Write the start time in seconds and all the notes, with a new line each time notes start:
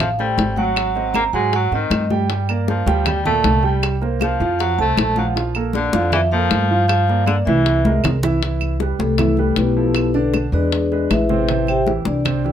Already playing: A1 F3 F4 F5
0.00 F3 F5, high bongo, high conga, low conga, claves
0.19 G3 A3 A4 C5 G5, high bongo, high conga
0.38 G#1, high bongo, low bongo, high conga
0.56 F#3 F#4 F#5, high conga
0.76 high bongo, high conga, claves
0.95 C4 C5 D#5, high bongo, high conga
1.14 A#3 A#5, high bongo, high conga, claves
1.33 G#2 F#3 G#3 F#4 F#5 G#5, high bongo, high conga
1.53 F#3 F#5, high bongo, high conga
1.72 G#2 D#3 C4 C5 D#5, high bongo, high conga
1.90 G2, high bongo, low bongo, high conga, claves
2.10 G3 G4 G5, high conga
2.29 G3 G4 G5, high bongo, high conga
2.49 A#3 A#4 D5, high bongo, high conga, claves
2.68 F3 F5, high bongo, high conga
2.86 D2 G3 G4 G5, high bongo, high conga
3.06 G3 G5, high bongo, high conga, low conga, claves
3.25 A#2 A3 A4 D5 A5, high bongo, high conga, low conga
3.44 C2, high bongo, low bongo, high conga
3.63 G3 G4 G5
3.82 high bongo, high conga, claves
4.01 A#3 A#4 C5, high bongo, high conga
4.20 F3 F5, high bongo, high conga, claves
4.40 F2 F3 F4 F5, high bongo, high conga
4.59 F#3 F#5, high bongo, high conga
4.78 C2 A3 A4 C5 A5, high bongo, high conga
4.97 A#1, high bongo, low bongo, high conga, claves
5.16 F3 F#3 F4 F5 F#5, high conga
5.36 F3 F4 F5, high bongo, high conga
5.55 A#3 A4 A#4, high bongo, high conga, claves
5.73 D3 D5, high bongo, high conga
5.93 F2 F3 F4 F5, high bongo, high conga
6.12 E3 E5, high bongo, high conga, low conga, claves
6.31 F3 A#3 A4 A#4 F5, high bongo, high conga
6.51 G2, high bongo, low bongo, high conga
6.71 F3 F4 F5
6.88 F3 F5, high bongo, high conga, claves
7.08 A#3 A#4 D5, high bongo, high conga
7.26 D3 D5, high bongo, high conga, claves
7.45 C2 E3 E4 E5, high bongo, high conga
7.66 high bongo
7.85 G#3 G#4 A#4, high bongo, high conga
8.04 C2, high bongo, low bongo, low conga, claves
8.23 E3 E4 E5, low conga
8.42 E3 E4 E5, high bongo, high conga
8.61 high bongo, high conga, claves
8.80 G3 G4 B4, high bongo, high conga
8.99 C2 A3 A4, high bongo, high conga
9.18 E3 E4 E5, high bongo, high conga, low conga, claves
9.37 G3 G4 B4, high bongo, high conga
9.56 B1 B3 E4 G4 B4, high bongo, low bongo, high conga
9.77 F3 E4 A4
9.95 high bongo, high conga, claves
10.14 D3 D4 A4 B4 D5, high bongo, high conga
10.34 high bongo, high conga, claves
10.52 E2 G#3 D4 G#4 B4 D5, high bongo, high conga
10.72 high bongo, high conga
10.92 G#3 G#4 B4, high bongo, high conga
11.10 A1 E4 G#4 B4 E5, high bongo, low bongo, high conga, claves
11.29 C3 C4 C5, high conga
11.48 C3 C4 C5, high bongo, high conga
11.67 G4 C5 E5 G5, high bongo, high conga, claves
11.87 E3 E4 G4, high bongo, high conga
12.05 C2 D4 D5, high bongo, high conga
12.25 C3 C4 C5, high bongo, high conga, low conga, claves
12.44 E3 E4 G4, high bongo, high conga